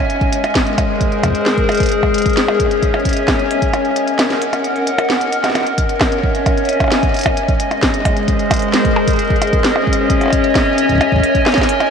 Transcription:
Already playing: D#5 G#5
0.10 G#3, closed hi-hat
0.21 kick, closed hi-hat
0.30 G#4 A#4, closed hi-hat
0.44 closed hi-hat, percussion blips
0.55 kick, snare, closed hi-hat
0.67 C5, closed hi-hat
0.78 kick, closed hi-hat, percussion blips
1.01 kick, closed hi-hat
1.12 closed hi-hat
1.23 kick, closed hi-hat, percussion blips
1.26 kick
1.28 kick
1.30 kick
1.33 kick, closed hi-hat
1.46 snare, closed hi-hat
1.58 kick, closed hi-hat
1.69 closed hi-hat, percussion blips
1.72 closed hi-hat
1.75 closed hi-hat
1.77 closed hi-hat
1.80 kick, closed hi-hat
1.83 closed hi-hat
1.86 closed hi-hat
1.89 closed hi-hat
1.92 C#4, closed hi-hat
2.03 kick, percussion blips
2.09 C#5
2.14 closed hi-hat
2.18 closed hi-hat
2.22 kick, closed hi-hat
2.26 closed hi-hat
2.30 closed hi-hat
2.33 snare, closed hi-hat
2.37 closed hi-hat
2.48 percussion blips
2.55 E5
2.60 kick, closed hi-hat
2.71 G#5, closed hi-hat
2.83 kick, closed hi-hat
2.94 closed hi-hat, percussion blips
3.00 closed hi-hat
3.05 kick, closed hi-hat
3.09 closed hi-hat
3.11 closed hi-hat
3.13 closed hi-hat
3.17 closed hi-hat
3.28 kick, snare, closed hi-hat, percussion blips
3.39 closed hi-hat
3.51 closed hi-hat
3.62 kick, closed hi-hat
3.73 A#4, closed hi-hat, percussion blips
3.85 closed hi-hat
3.96 closed hi-hat
4.03 D#5 F#5
4.08 closed hi-hat
4.19 snare, closed hi-hat, percussion blips
4.30 snare, closed hi-hat
4.42 closed hi-hat
4.53 closed hi-hat, percussion blips
4.64 closed hi-hat
4.76 closed hi-hat
4.87 closed hi-hat
4.98 closed hi-hat, percussion blips
5.10 snare
5.21 closed hi-hat
5.33 closed hi-hat
5.44 snare, closed hi-hat, percussion blips
5.50 snare
5.55 C#4, snare, closed hi-hat, percussion blips
5.61 snare
5.67 closed hi-hat
5.77 C#5, kick, closed hi-hat
5.86 E5, closed hi-hat
6.01 kick, snare, closed hi-hat, percussion blips
6.12 closed hi-hat
6.19 G#5
6.23 kick
6.35 closed hi-hat
6.46 kick, closed hi-hat, percussion blips
6.58 closed hi-hat
6.65 closed hi-hat
6.69 closed hi-hat
6.73 closed hi-hat
6.80 kick, closed hi-hat, percussion blips
6.84 percussion blips
6.88 snare, closed hi-hat, percussion blips
6.92 percussion blips
6.95 percussion blips
6.99 kick, closed hi-hat, percussion blips
7.14 closed hi-hat
7.17 closed hi-hat
7.19 closed hi-hat
7.21 closed hi-hat
7.23 kick, closed hi-hat, percussion blips
7.37 G#3, closed hi-hat
7.48 G#4, kick, closed hi-hat
7.60 closed hi-hat
7.71 closed hi-hat, percussion blips
7.83 kick, snare, closed hi-hat
7.88 A#4
7.94 closed hi-hat
8.03 C5, kick, closed hi-hat, percussion blips
8.17 closed hi-hat
8.28 kick, closed hi-hat
8.39 closed hi-hat
8.51 kick, closed hi-hat, percussion blips
8.54 closed hi-hat
8.56 closed hi-hat
8.59 closed hi-hat
8.62 closed hi-hat
8.73 snare, closed hi-hat
8.85 kick, closed hi-hat
8.96 percussion blips
9.08 kick, closed hi-hat
9.10 closed hi-hat
9.13 closed hi-hat
9.16 closed hi-hat
9.19 C#4, closed hi-hat
9.22 closed hi-hat
9.25 closed hi-hat
9.27 kick, closed hi-hat
9.30 closed hi-hat
9.36 C#5, closed hi-hat
9.42 closed hi-hat, percussion blips
9.47 closed hi-hat
9.53 kick, closed hi-hat
9.64 snare, closed hi-hat
9.76 percussion blips
9.87 E5, kick
9.93 closed hi-hat
10.01 G#5
10.10 kick, closed hi-hat
10.21 closed hi-hat, percussion blips
10.24 percussion blips
10.26 percussion blips
10.28 percussion blips
10.30 kick, closed hi-hat, percussion blips
10.44 closed hi-hat
10.55 kick, snare, closed hi-hat, percussion blips
10.78 closed hi-hat
10.89 kick, closed hi-hat
10.92 kick
10.95 kick
10.98 A#4, kick, closed hi-hat, percussion blips
11.12 kick
11.16 kick
11.20 kick, closed hi-hat
11.35 kick, closed hi-hat
11.46 snare, closed hi-hat, percussion blips
11.52 snare, closed hi-hat, percussion blips
11.58 kick, snare, closed hi-hat, percussion blips
11.63 closed hi-hat
11.69 closed hi-hat
11.80 F#5, closed hi-hat, percussion blips

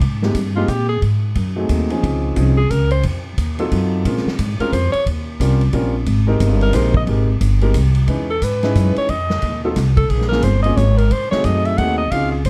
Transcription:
0.01 G#2, kick, ride
0.22 G#3 A#3 C4 D#4 G4, snare
0.34 G2, kick, hi-hat pedal, ride
0.56 G#3 A#3 C4 D#4 F4 G4
0.68 A#2 G4, kick, hi-hat pedal, ride
0.89 G#4
1.02 G#2, kick, ride
1.35 F#2, kick, ride
1.56 F#3 A3 C4 D#4 G#4
1.69 D#2, kick, hi-hat pedal, ride
1.90 F3 C4 C#4 D#4 G#4, ride
2.03 C#2, kick, ride
2.36 C2 F3 C4 C#4 D#4 G#4, kick, hi-hat pedal, ride
2.58 G#4
2.70 C#2 A#4, kick, hi-hat pedal, ride
2.90 C5, ride
3.03 F2, kick, ride
3.38 D#2, kick, hi-hat pedal, ride
3.59 F#3 C4 D#4 F4 A4, ride
3.71 F#2, kick, ride
4.05 A#2 G#3 C4 C#4 F4 A#4, kick, ride
4.17 snare
4.26 muted upright bass stroke, snare
4.39 G#2, kick, hi-hat pedal, ride
4.60 G#3 C4 C#4 F4 A#4, muted upright bass stroke, ride
4.72 F2 C5, kick, hi-hat pedal, ride
4.92 C#5, muted upright bass stroke, ride
5.06 D#2, kick, ride
5.40 C2 G3 C4 C#4 F4 A#4, kick, hi-hat pedal, ride
5.61 ride
5.73 A#1 G3 C4 C#4 F4 A#4, kick, ride
6.06 G#1, kick, ride
6.27 G#3 C4 D#4 G4 A#4
6.40 G1, kick, hi-hat pedal, ride
6.61 A#4, ride
6.73 A#1 G#3 C4 D#4 G4 A#4 C5, kick, snare, hi-hat pedal, ride
6.94 D#5, kick
7.07 G#1 G#3 C4 D#4 G4 A#4, kick, ride
7.41 G1, kick, hi-hat pedal, ride
7.61 G#3 C4 D#4 G4 A#4, ride
7.74 C2, kick, hi-hat pedal, ride
7.95 ride
8.07 E2 G#3 C#4 D#4 E4 B4, kick, ride
8.30 A4
8.42 G#2 B4, kick, hi-hat pedal, ride
8.63 G#3 C#4 D#4 E4 B4, snare, ride
8.75 F#2, kick, hi-hat pedal, ride
8.96 C#5, muted upright bass stroke, ride
9.09 F2 D#5, kick, ride
9.30 snare
9.42 D#2, kick, ride
9.64 F#3 C4 D#4 F4 A4
9.76 C2, kick, snare, hi-hat pedal, ride
9.97 A4, kick, ride
10.10 A#1 G#4, kick, ride
10.21 snare
10.29 A#3 C4 C#4 F4 G#4 A#4, snare
10.42 G1 C5, kick, hi-hat pedal, ride
10.63 A#3 C4 C#4 F4 G#4 D#5, ride
10.77 G#1 C#5, kick, hi-hat pedal, ride
10.98 A#4, ride
11.11 G#2 C5, kick, ride
11.31 A3 C4 D#4 F#4 G#4 C#5, muted upright bass stroke, snare
11.44 F#2 D#5, kick, hi-hat pedal, ride
11.65 E5, ride
11.78 D#2 A3 C4 D#4 F#4 G#4 F#5, kick, ride
11.98 D#5
12.11 C#2 C4 C#4 D#4 F4 G#4 F5, kick, ride
12.32 G#4
12.45 G#2 C5, kick, hi-hat pedal, ride

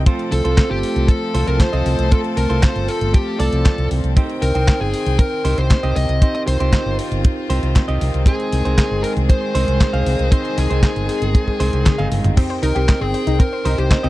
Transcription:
0.06 F3 A3 C4 F4 A4 C5, kick, closed hi-hat
0.19 closed hi-hat
0.32 C2 A4, open hi-hat
0.44 C2 C4 F4 A4 C5, closed hi-hat
0.58 kick, snare, clap, closed hi-hat
0.71 G1 G4
0.83 open hi-hat
0.96 C2, closed hi-hat
1.08 A4, kick, closed hi-hat
1.34 C2 C4 F4 A4 C5, open hi-hat
1.47 C2 A#4, closed hi-hat
1.60 C5, kick, snare, clap, closed hi-hat
1.73 C2 C4 F4 A4 D#5, closed hi-hat
1.86 C2, open hi-hat
1.99 C2, closed hi-hat
2.11 C4 F4 A4 C5, kick, closed hi-hat
2.24 closed hi-hat
2.37 C2 A#4, open hi-hat
2.50 C2 C4 F4 A4 C5, closed hi-hat
2.63 C5, kick, snare, clap, closed hi-hat
2.76 G1, closed hi-hat
2.88 A4, open hi-hat
3.01 G1, closed hi-hat
3.14 G4, kick, closed hi-hat
3.39 C2 C4 F4 A4 D5, open hi-hat
3.53 C2, closed hi-hat
3.65 kick, snare, clap, closed hi-hat
3.78 C2, closed hi-hat
3.91 C2, open hi-hat
4.04 C2, closed hi-hat
4.16 D#3 C4 D#4 G4 C5 G5, kick, closed hi-hat
4.30 closed hi-hat
4.42 C2 A#4, open hi-hat
4.55 C2 C4 D#4 C5 G5, closed hi-hat
4.68 kick, snare, clap, closed hi-hat
4.81 G1 G#4
4.94 open hi-hat
5.06 C2, closed hi-hat
5.19 A#4, kick, closed hi-hat
5.45 C2 C4 D#4 G4 C5, open hi-hat
5.58 C2 C5, closed hi-hat
5.70 kick, snare, clap, closed hi-hat
5.83 C2 C4 D#4 G4 D#5, closed hi-hat
5.96 C2 D#5, open hi-hat
6.09 C2, closed hi-hat
6.21 C4 D#4 F4 G4 C5, kick, closed hi-hat
6.35 D#5, closed hi-hat
6.47 C2 C5, open hi-hat
6.60 C2 C4 D#4 G4 C5, closed hi-hat
6.73 kick, snare, clap, closed hi-hat
6.86 G1
6.99 open hi-hat
7.11 G1, closed hi-hat
7.24 kick, closed hi-hat
7.50 C2 C4 D#4 G4 C5, open hi-hat
7.63 C2, closed hi-hat
7.76 kick, snare, clap, closed hi-hat
7.88 C2 C4 D#4 G4 D#5, closed hi-hat
8.01 C2, open hi-hat
8.14 C2, closed hi-hat
8.26 G#3 C4 D#4 G#4 C5, kick, closed hi-hat
8.40 closed hi-hat
8.53 C2, open hi-hat
8.65 C2 C4 D#4 G#4 C5, closed hi-hat
8.78 kick, snare, clap, closed hi-hat
8.91 G1
9.04 A#4, open hi-hat
9.17 C2, closed hi-hat
9.30 C5, kick, closed hi-hat
9.55 C2 C4 D#4 G#4 C5, open hi-hat
9.68 C2, closed hi-hat
9.81 kick, snare, clap, closed hi-hat
9.93 C2 C4 D#4 G#4 F5, closed hi-hat
10.06 C2, open hi-hat
10.19 C2, closed hi-hat
10.32 C4 D#4 G#4 C5, kick, closed hi-hat
10.45 closed hi-hat
10.58 C2 G#4, open hi-hat
10.70 C2 C4 D#4 G#4 C5, closed hi-hat
10.83 kick, snare, clap, closed hi-hat
10.96 G1, closed hi-hat
11.09 open hi-hat
11.22 G1, closed hi-hat
11.35 kick, closed hi-hat
11.48 kick
11.60 C2 C4 D#4 G#4 C5, open hi-hat
11.73 C2, closed hi-hat
11.86 kick, snare, clap, closed hi-hat, high tom
11.98 G1 C4 D#4 G#4 F5, snare, closed hi-hat, high tom
12.12 G1, open hi-hat
12.24 G1, closed hi-hat, mid tom
12.37 C4 D#4 G4 C5 G5, kick, closed hi-hat, crash
12.50 C5, closed hi-hat
12.63 C2 D#4 A#4, open hi-hat
12.75 C2 C4 D#4 G4 C5 G5, closed hi-hat
12.88 D#5, kick, snare, clap, closed hi-hat
13.01 G1 C4 G#4
13.14 C5, open hi-hat
13.27 C2 D#4, closed hi-hat
13.40 C4 A#4, kick, closed hi-hat
13.53 C5
13.65 C2 C4 D#4 G4 C5, open hi-hat
13.78 C2 G4 C5, closed hi-hat
13.91 D#5, kick, snare, clap, closed hi-hat
14.03 C2 C4 D#4 G4 D#5, closed hi-hat

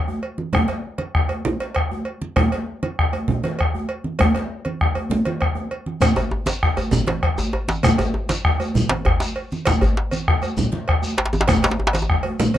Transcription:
0.08 djembe tone
0.23 cowbell
0.38 high conga
0.53 bombo rim, bombo low, cowbell, high conga, low conga, djembe bass
0.68 cowbell, djembe slap, djembe tone
0.84 djembe slap
0.98 bombo rim, cowbell, high conga
1.15 bombo rim, bombo low
1.29 bombo rim, cowbell, djembe tone
1.45 bombo rim, djembe slap, low conga, djembe bass
1.60 cowbell, djembe slap
1.75 bombo rim, bombo low, cowbell, djembe slap
1.91 djembe tone
2.05 cowbell
2.22 high conga
2.36 bombo rim, bombo low, cowbell, high conga, djembe bass, low conga
2.52 cowbell, djembe slap, djembe tone
2.67 djembe slap
2.83 bombo rim, cowbell, high conga
2.99 bombo rim, bombo low
3.13 bombo rim, cowbell, djembe tone
3.28 bombo rim, djembe slap, low conga, djembe bass
3.44 cowbell, djembe slap, high conga
3.59 bombo rim, bombo low, cowbell, djembe slap
3.75 djembe tone
3.89 cowbell
4.04 high conga
4.19 bombo rim, bombo low, cowbell, low conga, djembe bass
4.35 cowbell, djembe slap, high conga, djembe tone
4.65 cowbell, high conga
4.80 bombo rim, bombo low, djembe slap
4.95 cowbell, djembe tone
5.10 bombo rim, high conga, djembe bass, low conga
5.25 cowbell, djembe slap, high conga
5.41 bombo rim, bombo low, cowbell
5.55 djembe slap, djembe tone
5.71 cowbell, high conga
5.86 bombo rim, high conga
6.01 bombo rim, bombo low, cowbell, high conga, djembe bass, low conga, shekere
6.16 bombo rim, cowbell, djembe slap, djembe tone, shekere
6.31 djembe slap, djembe tone
6.46 bombo rim, cowbell, djembe slap, high conga, shekere
6.63 bombo rim, bombo low
6.77 bombo rim, cowbell, djembe tone, shekere
6.91 bombo rim, djembe slap, djembe tone, low conga, djembe bass, shekere
7.07 cowbell, djembe slap, high conga
7.23 bombo rim, bombo low, cowbell, djembe slap
7.38 djembe tone, shekere
7.53 cowbell, djembe tone
7.68 djembe slap, high conga, shekere
7.83 bombo rim, bombo low, cowbell, high conga, djembe bass, low conga, shekere
7.98 bombo rim, cowbell, djembe slap, djembe tone, shekere
8.14 djembe slap, djembe tone
8.29 bombo rim, cowbell, djembe slap, high conga, shekere
8.45 bombo rim, bombo low
8.60 bombo rim, cowbell, djembe tone, shekere
8.74 bombo rim, djembe slap, djembe bass, low conga, shekere
8.89 cowbell, djembe slap, high conga
9.05 bombo rim, bombo low, cowbell, djembe slap, djembe bass
9.20 djembe slap, djembe tone, shekere
9.36 cowbell
9.52 high conga, shekere
9.65 bombo rim, bombo low, cowbell, djembe slap, high conga, low conga, djembe bass, shekere
9.81 bombo rim, cowbell, djembe slap, djembe tone, djembe bass, shekere
9.97 djembe slap
10.11 bombo rim, cowbell, high conga, shekere
10.28 bombo rim, bombo low
10.42 bombo rim, cowbell, djembe tone, shekere
10.57 bombo rim, djembe slap, djembe bass, low conga, shekere
10.72 djembe slap, high conga
10.88 bombo rim, bombo low, cowbell, djembe slap
11.02 djembe tone, shekere
11.18 cowbell, djembe slap
11.26 djembe slap
11.33 djembe tone, high conga, shekere
11.41 djembe slap
11.48 bombo rim, bombo low, cowbell, djembe slap, high conga, low conga, djembe bass, shekere
11.57 djembe tone
11.63 cowbell, djembe slap, djembe tone, shekere
11.71 djembe slap
11.80 djembe tone
11.87 djembe slap
11.93 bombo rim, cowbell, djembe slap, high conga, shekere
12.02 djembe tone
12.10 bombo rim, bombo low
12.23 cowbell, high conga, djembe tone
12.40 high conga, low conga, djembe bass, shekere
12.54 cowbell, djembe slap, high conga

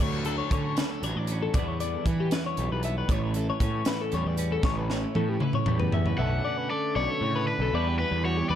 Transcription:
Already playing: F#3
0.00 D2 C#5
0.25 D3 A4, closed hi-hat
0.38 C#5
0.51 D3 C#4 C#5, kick, closed hi-hat
0.77 D3 B4, snare, closed hi-hat
0.91 A4
1.03 A1 F#3 C#5, closed hi-hat
1.16 A1 D5
1.27 closed hi-hat
1.32 C#4
1.43 A4
1.54 E2 E3 G3 D5, kick, closed hi-hat
1.58 B3 D4
1.68 C#5
1.80 E3 D5, closed hi-hat
2.06 E3 B3 B4, kick, closed hi-hat
2.20 G4
2.31 E3 B4, snare, closed hi-hat
2.46 C#5
2.57 B1 G3, closed hi-hat
2.71 B1 B4
2.83 B3 E5, closed hi-hat
2.98 B4
3.08 A1 A2 C#5, kick, closed hi-hat
3.34 E3 A4, closed hi-hat
3.50 C#5
3.60 A2 C#4 C#5, kick, closed hi-hat
3.85 E3 B4, snare, closed hi-hat
4.01 A4
4.12 E2 G3 C#5, closed hi-hat
4.25 E2 D5
4.37 C#4, closed hi-hat
4.52 A4
4.63 A1 A2 C#5, kick, snare
4.78 B4
4.90 E3 C#5, snare
5.15 A2 C#4 A4, high tom
5.30 G4
5.40 E3 B4, mid tom
5.53 C#5, mid tom
5.66 E2 G3, mid tom
5.79 E2 B4, floor tom
5.92 C#4 E5, floor tom
6.06 B4, floor tom
6.18 B1 B2 D3 A3 C#4 D4 E5 F#5
6.45 C#4 D5
6.58 B4
6.70 D3 A3 A4 D5
6.96 B1 B2 C#5 D5
7.10 A4
7.21 A2 C#3 C#5
7.36 B4
7.46 D3 B4
7.59 B1 A4
7.73 E2 E3 G3 B3 D4 D5
7.88 G4
7.99 B3 B4
8.11 E2
8.24 E3 G3 F#4 C#5
8.37 G4
8.49 E2 B4 D5

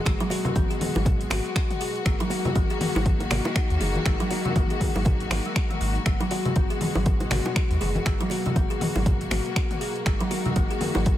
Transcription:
Already playing: B2 G#3 F#4
0.06 G#1 G#3, finger snap, kick, closed hi-hat
0.20 F#3, closed hi-hat, high bongo
0.30 F#4, open hi-hat, low bongo
0.45 G#3, closed hi-hat, high conga, low conga
0.56 G#1 B3, kick, closed hi-hat, high conga
0.70 G#4, closed hi-hat
0.81 open hi-hat, mid tom, high conga
0.95 G#1 F#3, high bongo
1.05 kick, closed hi-hat, low bongo, low conga
1.21 closed hi-hat
1.30 G#1 F#4, finger snap, open hi-hat, mid tom, low bongo
1.46 closed hi-hat
1.56 finger snap, kick, closed hi-hat
1.71 closed hi-hat, mid tom
1.81 G#4, open hi-hat
1.96 closed hi-hat
2.06 G#1 D#3 G#3 A#3, finger snap, kick, closed hi-hat
2.20 F#3, closed hi-hat, high bongo
2.30 F#4, open hi-hat, low bongo
2.45 G#3, closed hi-hat, high conga, low conga
2.55 G#1 A#3, kick, closed hi-hat, high conga
2.70 G#4, closed hi-hat
2.81 open hi-hat, mid tom, high conga
2.95 G#1 F#3, high bongo
3.06 kick, closed hi-hat, high conga
3.20 closed hi-hat, high bongo
3.30 G#1 F#4, finger snap, open hi-hat, mid tom, low bongo, low conga
3.45 closed hi-hat, high bongo
3.56 finger snap, kick, closed hi-hat
3.70 D#2, closed hi-hat
3.80 F#1 G#4, open hi-hat, mid tom
3.95 closed hi-hat, high conga
4.06 G#1 G#3, finger snap, kick, closed hi-hat
4.20 F#3, closed hi-hat, high bongo
4.30 F#4, open hi-hat, low bongo
4.45 G#3, closed hi-hat, high conga, low conga
4.55 G#1 A#3, kick, closed hi-hat, high conga
4.70 G#4, closed hi-hat
4.81 kick, open hi-hat, mid tom, high conga
4.95 G#1 F#3, high bongo
5.05 kick, closed hi-hat, low bongo, low conga
5.20 closed hi-hat
5.31 G#1 A#3, finger snap, open hi-hat, mid tom, low bongo
5.45 G#3, closed hi-hat
5.56 finger snap, kick, closed hi-hat
5.71 G#3, closed hi-hat, mid tom
5.81 G#1 A#3, open hi-hat
5.96 closed hi-hat
6.06 G#1 B2 G#3, finger snap, kick, closed hi-hat
6.20 F#3, closed hi-hat, high bongo
6.31 F#4, open hi-hat, low bongo
6.45 G#3, closed hi-hat, high conga, low conga
6.56 G#1 B3, kick, closed hi-hat, high conga
6.70 G#4, closed hi-hat
6.81 open hi-hat, mid tom, high conga
6.95 G#1 F#3, high bongo
7.06 kick, closed hi-hat, high conga
7.20 closed hi-hat, high bongo
7.31 G#1 F#4, finger snap, open hi-hat, mid tom, low bongo, low conga
7.46 closed hi-hat, high bongo
7.56 finger snap, kick, closed hi-hat
7.70 D#2, closed hi-hat
7.81 F#1 G#4, open hi-hat, mid tom
7.95 closed hi-hat, high conga
8.06 G#1 G#3 A#3, finger snap, kick, closed hi-hat
8.20 F#3, closed hi-hat, high bongo
8.30 F#4, open hi-hat, low bongo
8.46 G#3, closed hi-hat, high conga, low conga
8.56 G#1 B3, kick, closed hi-hat, high conga
8.70 G#4, closed hi-hat
8.81 open hi-hat, mid tom, high conga
8.96 G#1 F#3, high bongo
9.06 kick, closed hi-hat, low bongo, low conga
9.21 closed hi-hat
9.31 G#1 F#4, finger snap, open hi-hat, mid tom, low bongo
9.46 closed hi-hat
9.56 finger snap, kick, closed hi-hat
9.71 closed hi-hat, mid tom
9.81 G#4, open hi-hat
9.96 closed hi-hat
10.06 G#1 D#3 G#3 F#4, finger snap, kick, closed hi-hat
10.20 F#3, closed hi-hat, high bongo
10.31 F#4, open hi-hat, low bongo
10.45 G#3, closed hi-hat, high conga, low conga
10.56 G#1 A#3, kick, closed hi-hat, high conga
10.71 G#4, closed hi-hat
10.81 open hi-hat, mid tom, high conga
10.95 G#1 F#3, high bongo
11.06 kick, closed hi-hat, high conga

